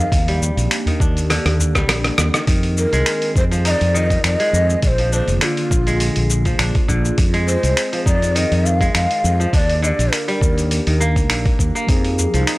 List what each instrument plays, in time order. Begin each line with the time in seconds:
Already playing: kora D#3 D#4, ney F5
0.12 fretless electric bass D#2, ambient pad A#3 D4 G4, kick, open hi-hat, shaker
0.28 kora G3, open hi-hat
0.41 udu, shaker
0.57 fretless electric bass A#1, open hi-hat, shaker
0.71 finger snap, open hi-hat, shaker
0.86 kora D#3, open hi-hat, udu
1.00 fretless electric bass D#2, kora D4, kick, shaker
1.17 open hi-hat, shaker
1.30 kora D3, cross-stick, open hi-hat, shaker
1.45 fretless electric bass D#2, cross-stick, open hi-hat
1.60 udu, shaker
1.75 kora G3, kick, cross-stick, shaker
1.88 fretless electric bass A#1, finger snap, cross-stick, open hi-hat, shaker
2.04 cross-stick, open hi-hat
2.18 fretless electric bass D#2, cross-stick, shaker
2.34 kora D#3, cross-stick, open hi-hat, shaker
2.47 fretless electric bass F2, kora D#3, ambient pad D#3 C4 F4 G#4, kick, open hi-hat, shaker
2.63 open hi-hat
2.77 ney A#4, shaker
2.93 fretless electric bass C2, kora G#3, open hi-hat, shaker
3.06 finger snap, open hi-hat, shaker
3.22 open hi-hat
3.36 fretless electric bass F2, ney C5, kick, shaker
3.51 kora F3, open hi-hat, shaker
3.65 kora D#4, ney D#5, open hi-hat, shaker
3.71 ney D5
3.81 fretless electric bass F2, open hi-hat
3.94 kora D#3, ney D#5, shaker
4.10 kick, open hi-hat, shaker
4.24 fretless electric bass F2, ney D#5, finger snap, open hi-hat, shaker
4.40 kora G#3, open hi-hat
4.53 fretless electric bass F2, shaker
4.70 shaker
4.82 fretless electric bass A#1, ambient pad D3 A#3 F4, ney D5, kick, open hi-hat, shaker
4.88 ney C5
4.98 kora F3, open hi-hat
5.12 kora D4, ney C5, shaker
5.28 fretless electric bass F1, open hi-hat, shaker
5.41 kora D3, ney F4, finger snap, open hi-hat, shaker
5.57 open hi-hat
5.71 fretless electric bass A#1, kick, shaker
5.87 kora G#3, open hi-hat, shaker
6.00 open hi-hat, shaker
6.16 fretless electric bass A#1, open hi-hat
6.30 shaker
6.45 kora F3, kick, open hi-hat, shaker
6.59 fretless electric bass A#1, kora D4, finger snap, open hi-hat, shaker
6.75 kick, open hi-hat
6.88 fretless electric bass A#1, kora D3, kick, shaker
7.05 shaker
7.18 fretless electric bass F2, ambient pad C4, kick, open hi-hat, shaker
7.34 kora G#3, open hi-hat
7.48 ney C5, shaker
7.63 fretless electric bass C2, open hi-hat, shaker
7.77 finger snap, open hi-hat, shaker
7.93 kora F3, open hi-hat
8.06 fretless electric bass F2, kora D#4, ney D5, kick, shaker
8.22 open hi-hat, shaker
8.36 kora D#3, ney D#5, open hi-hat, shaker
8.52 fretless electric bass F2, open hi-hat
8.66 ney F5, shaker
8.81 kora G#3, kick, open hi-hat, shaker
8.95 fretless electric bass F2, ney F5, finger snap, open hi-hat, shaker
9.11 open hi-hat
9.24 fretless electric bass F2, shaker
9.40 kora F3, shaker
9.53 fretless electric bass D#2, ambient pad A#3 D4 G4, kora D4, ney D#5, kick, open hi-hat, shaker
9.58 ney D5
9.69 open hi-hat
9.82 kora D3, ney D#5, shaker
9.88 ney D5
9.99 fretless electric bass A#1, open hi-hat, shaker
10.13 ney A#4, finger snap, open hi-hat, shaker
10.28 kora G3, open hi-hat
10.41 fretless electric bass D#2, kick, shaker
10.58 open hi-hat, shaker
10.71 open hi-hat, shaker
10.87 fretless electric bass D#2, kora D#3, open hi-hat
11.00 kora A#3, shaker
11.16 kick, open hi-hat, shaker
11.30 fretless electric bass A#1, kora D3, finger snap, open hi-hat, shaker
11.46 kick, open hi-hat
11.59 fretless electric bass D#2, kick, shaker
11.75 kora A#3, shaker
11.87 fretless electric bass F2, synth keys F3 C4 D#4, ambient pad F3 C4 D#4 G#4, kick, open hi-hat, shaker
11.91 synth keys G#4
12.05 open hi-hat
12.18 udu, shaker
12.34 fretless electric bass C2, kora F3, open hi-hat, shaker
12.47 kora D#4, finger snap, open hi-hat, shaker